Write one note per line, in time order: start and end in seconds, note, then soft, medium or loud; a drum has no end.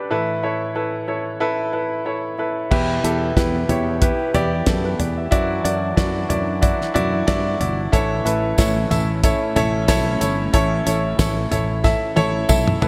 0.00 0.13 D4 medium
0.00 0.13 G4 medium
0.00 0.11 A4 medium
0.00 0.11 B4 loud
0.10 2.67 A2 medium
0.10 2.67 E3 medium
0.10 0.39 E4 medium
0.10 0.39 A4 medium
0.10 0.39 B4 medium
0.43 0.71 E4 medium
0.43 0.72 A4 medium
0.43 0.72 C#5 medium
0.75 1.04 E4 medium
0.75 1.04 A4 medium
0.75 1.04 B4 medium
1.08 1.36 E4 medium
1.08 1.37 A4 medium
1.08 1.37 C#5 medium
1.40 1.69 E4 loud
1.40 1.69 A4 medium
1.40 1.69 B4 loud
1.73 2.01 E4 medium
1.73 2.02 A4 medium
1.73 2.02 B4 medium
2.05 2.34 E4 medium
2.05 2.34 A4 medium
2.05 2.34 C#5 medium
2.38 2.67 E4 medium
2.38 2.67 A4 medium
2.38 2.67 B4 medium
2.70 2.98 E2 medium
2.70 3.65 B2 medium
2.70 12.88 E3 medium
2.70 5.29 B3 medium
2.70 2.99 E4 medium
2.70 5.29 G4 medium
2.70 3.00 G4 medium
2.70 3.00 B4 loud
2.70 kick medium
2.70 crash medium
3.04 3.31 E2 medium
3.04 3.32 E4 medium
3.04 3.32 G4 medium
3.04 3.32 A4 medium
3.04 closed hi-hat medium
3.37 3.63 E2 medium
3.37 3.65 E4 medium
3.37 3.65 G4 medium
3.37 3.65 B4 medium
3.37 kick medium
3.37 snare medium
3.37 closed hi-hat medium
3.69 4.11 E2 medium
3.69 3.97 E4 medium
3.69 3.97 G4 medium
3.69 3.98 C#5 medium
3.69 closed hi-hat medium
3.69 floor tom medium
4.01 4.30 E4 medium
4.01 4.30 G4 medium
4.01 4.30 B4 medium
4.01 kick loud
4.01 closed hi-hat medium
4.34 4.61 E2 medium
4.34 4.62 E4 medium
4.34 4.63 G4 medium
4.34 4.63 D5 loud
4.34 closed hi-hat medium
4.34 floor tom medium
4.66 4.94 F#2 medium
4.66 4.84 A4 medium
4.66 kick medium
4.66 snare loud
4.66 closed hi-hat medium
4.85 4.99 B4 medium
4.99 5.26 E2 medium
4.99 5.17 D5 medium
4.99 closed hi-hat medium
4.99 floor tom medium
5.17 5.49 E5 medium
5.31 5.59 F#2 medium
5.31 6.26 F#3 medium
5.31 7.91 F#3 medium
5.31 7.91 D4 medium
5.31 5.60 E4 loud
5.31 5.60 F#4 medium
5.31 5.60 D5 loud
5.31 kick medium
5.31 closed hi-hat medium
5.64 5.92 F#2 medium
5.64 5.93 E4 medium
5.64 5.93 F#4 medium
5.64 5.93 D5 medium
5.64 closed hi-hat medium
5.96 6.24 F#2 medium
5.96 6.25 E4 medium
5.96 6.25 F#4 medium
5.96 6.25 D5 medium
5.96 kick medium
5.96 snare medium
5.96 closed hi-hat medium
6.29 6.72 F#2 medium
6.29 6.58 E4 medium
6.29 6.58 F#4 medium
6.29 6.58 D5 medium
6.29 closed hi-hat medium
6.29 floor tom medium
6.61 6.90 E4 medium
6.61 6.90 F#4 medium
6.61 6.91 D5 medium
6.61 kick loud
6.61 closed hi-hat medium
6.81 snare soft
6.94 7.22 F#2 medium
6.94 7.23 E4 loud
6.94 7.23 F#4 medium
6.94 7.23 D5 loud
6.94 closed hi-hat medium
6.94 floor tom medium
7.27 7.55 G2 medium
7.27 7.56 E4 medium
7.27 7.56 F#4 medium
7.27 7.56 D5 loud
7.27 kick medium
7.27 snare loud
7.27 closed hi-hat medium
7.60 7.87 G1 medium
7.60 7.88 E4 medium
7.60 7.89 F#4 medium
7.60 7.89 D5 medium
7.60 closed hi-hat medium
7.60 floor tom medium
7.92 8.20 A1 medium
7.92 8.87 A2 medium
7.92 8.87 E3 medium
7.92 12.88 A3 medium
7.92 12.88 C#4 medium
7.92 8.21 E4 loud
7.92 8.21 A4 medium
7.92 8.21 C#5 loud
7.92 kick medium
7.92 closed hi-hat medium
7.92 tambourine soft
8.25 8.52 A1 medium
8.25 8.53 E4 medium
8.25 8.54 A4 medium
8.25 8.54 B4 medium
8.25 closed hi-hat medium
8.25 tambourine soft
8.58 8.85 A1 medium
8.58 8.86 E4 medium
8.58 8.87 A4 medium
8.58 8.87 C#5 medium
8.58 kick loud
8.58 snare medium
8.58 closed hi-hat medium
8.58 tambourine medium
8.90 9.32 A1 medium
8.90 9.19 E4 medium
8.90 9.19 A4 medium
8.90 9.19 E5 medium
8.90 closed hi-hat medium
8.90 floor tom medium
8.90 tambourine soft
9.23 9.52 E4 medium
9.23 9.52 A4 medium
9.23 9.52 C#5 medium
9.23 kick loud
9.23 closed hi-hat loud
9.23 tambourine soft
9.56 9.89 A1 medium
9.56 9.84 E4 loud
9.56 9.84 A4 medium
9.56 9.85 C#5 loud
9.56 closed hi-hat medium
9.56 floor tom medium
9.56 tambourine soft
9.88 10.16 B1 medium
9.88 10.16 E4 loud
9.88 10.17 A4 medium
9.88 10.17 C#5 loud
9.88 kick loud
9.88 snare loud
9.88 closed hi-hat medium
9.88 tambourine medium
10.20 10.48 G1 medium
10.20 10.49 E4 medium
10.20 10.49 A4 medium
10.20 10.49 C#5 medium
10.20 closed hi-hat medium
10.20 tambourine soft
10.53 10.81 A1 medium
10.53 11.48 A2 medium
10.53 11.48 E3 medium
10.53 10.82 E4 loud
10.53 10.82 A4 medium
10.53 10.82 C#5 loud
10.53 kick loud
10.53 closed hi-hat medium
10.86 11.13 A1 medium
10.86 11.15 E4 medium
10.86 11.15 A4 medium
10.86 11.15 C#5 medium
10.86 closed hi-hat medium
10.86 tambourine soft
11.18 11.46 A1 medium
11.18 11.47 E4 medium
11.18 11.47 A4 medium
11.18 11.47 C#5 medium
11.18 kick medium
11.18 snare loud
11.18 closed hi-hat medium
11.18 tambourine medium
11.51 11.93 A1 medium
11.51 11.80 E4 medium
11.51 11.80 A4 medium
11.51 11.80 C#5 medium
11.51 closed hi-hat medium
11.51 floor tom medium
11.51 tambourine soft
11.84 12.12 E4 medium
11.84 12.12 A4 medium
11.84 12.13 E5 medium
11.84 kick loud
11.84 snare medium
11.84 tambourine soft
12.16 12.44 A1 medium
12.16 12.45 E4 loud
12.16 12.45 A4 medium
12.16 12.45 C#5 loud
12.16 high tom medium
12.16 tambourine soft
12.49 12.76 B1 medium
12.49 12.77 E4 loud
12.49 12.77 A4 medium
12.49 12.78 E5 loud
12.49 kick loud
12.49 mid tom medium
12.49 tambourine medium
12.68 mid tom medium
12.81 12.88 A1 medium
12.81 12.88 E4 medium
12.81 12.88 A4 medium
12.81 12.88 B4 medium
12.81 floor tom medium
12.81 tambourine soft